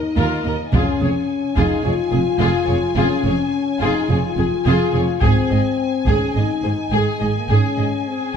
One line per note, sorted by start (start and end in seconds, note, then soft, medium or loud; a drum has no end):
0.00 0.45 D#4 medium
0.00 0.69 D#5 soft
0.17 0.25 D#2 medium
0.17 0.44 F4 medium
0.17 0.44 A#4 medium
0.45 0.53 D#2 soft
0.45 0.54 D#2 soft
0.45 0.55 A#4 soft
0.45 0.54 D#5 soft
0.73 0.81 F1 medium
0.73 0.81 F2 medium
0.73 1.53 C#4 medium
0.73 1.00 F4 medium
0.73 1.00 G#4 medium
0.73 5.21 G#5 soft
0.73 taiko soft
1.01 1.09 F1 soft
1.01 1.09 F2 soft
1.01 1.09 G#4 soft
1.01 1.10 C#5 soft
1.56 1.65 F1 medium
1.56 1.65 F2 medium
1.56 1.85 D#4 medium
1.56 1.83 F4 medium
1.56 1.83 G#4 medium
1.56 taiko soft
1.84 1.93 F1 soft
1.84 1.93 F2 soft
1.84 2.97 F4 medium
1.84 1.93 G#4 soft
1.84 1.92 C#5 soft
2.11 2.21 F1 soft
2.11 2.21 F2 soft
2.11 2.19 G#4 soft
2.11 2.21 G#4 soft
2.40 2.48 F1 medium
2.40 2.49 F2 medium
2.40 2.67 F4 medium
2.40 2.67 G#4 medium
2.66 2.77 F1 soft
2.66 2.78 F2 soft
2.66 2.77 G#4 soft
2.66 2.74 C#5 medium
2.95 3.04 F1 medium
2.95 3.05 F2 medium
2.95 3.81 C#4 medium
2.95 3.22 F4 medium
2.95 3.24 G#4 medium
3.24 3.32 F1 soft
3.24 3.34 F2 soft
3.24 3.34 G#4 soft
3.24 3.33 C#5 soft
3.81 3.89 F1 medium
3.81 3.90 F2 medium
3.81 4.10 D#4 medium
3.81 4.07 F4 medium
3.81 4.08 G#4 medium
4.09 4.17 F1 soft
4.09 4.18 F2 soft
4.09 5.22 F4 medium
4.09 4.18 G#4 soft
4.09 4.18 C#5 soft
4.37 4.45 F1 soft
4.37 4.46 F2 soft
4.37 4.46 G#4 soft
4.37 4.47 G#4 soft
4.66 4.74 F1 medium
4.66 4.75 F2 medium
4.66 4.92 F4 medium
4.66 4.93 G#4 medium
4.94 5.02 F1 soft
4.94 5.03 F2 soft
4.94 5.02 G#4 soft
4.94 5.03 C#5 soft
5.22 5.30 G#1 medium
5.22 5.30 G#2 medium
5.22 6.06 C4 medium
5.22 5.48 G#4 medium
5.22 8.37 G#5 medium
5.22 taiko medium
5.50 5.58 G#1 soft
5.50 5.59 G#2 soft
5.50 5.59 G#4 soft
5.50 5.59 D#5 soft
6.06 6.14 G#1 medium
6.06 6.15 G#2 soft
6.06 6.37 C#4 medium
6.06 6.33 G#4 medium
6.06 6.34 G#4 medium
6.06 taiko soft
6.34 6.42 G#1 soft
6.34 6.44 G#2 soft
6.34 6.44 G#4 soft
6.34 6.43 D#5 soft
6.39 6.94 D#4 medium
6.63 6.71 G#1 soft
6.63 6.73 G#2 soft
6.63 6.72 G#4 soft
6.63 6.71 C5 soft
6.91 6.99 G#1 medium
6.91 7.00 G#2 medium
6.91 7.23 G#3 medium
6.91 7.19 G#4 medium
6.91 7.19 G#4 soft
7.20 7.29 G#1 soft
7.20 7.29 G#2 soft
7.20 7.29 G#4 soft
7.20 7.28 D#5 soft
7.36 7.50 A#3 medium
7.48 7.57 G#1 medium
7.48 7.58 G#2 soft
7.48 8.07 C#4 medium
7.48 7.75 G#4 soft
7.48 7.77 G#4 soft
7.48 reverse cymbal soft
7.77 7.85 G#1 soft
7.77 7.86 G#2 soft
7.77 7.87 G#4 soft
7.77 7.85 D#5 soft
8.08 8.37 C4 soft
8.08 8.37 G#4 soft